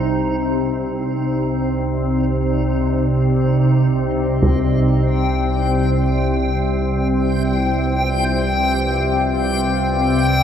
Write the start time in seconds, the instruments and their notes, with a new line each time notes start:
Already playing: synth drone C2 C3, ambient pad D#4 G4 C5 D5, synth texture D#4
4.43 ambient pad C4, synth texture G5, taiko
5.40 ambient pad B4
5.83 ambient pad F4